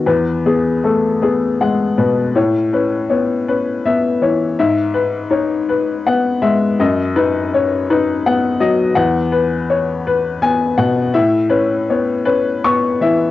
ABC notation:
X:1
M:6/8
L:1/8
Q:3/8=54
K:E
V:1 name="Upright piano"
B G A G f B | c B c B e c | e B c B f e | d B c B f d |
f B c B g f | e B c B c' e |]
V:2 name="Upright piano"
E,, B, A, B, G, B,, | A,, C B, C B, E, | G,,2 D z B, G, | F,, D C D B, F, |
E,,4 B, B,, | A,, C B, C B, E, |]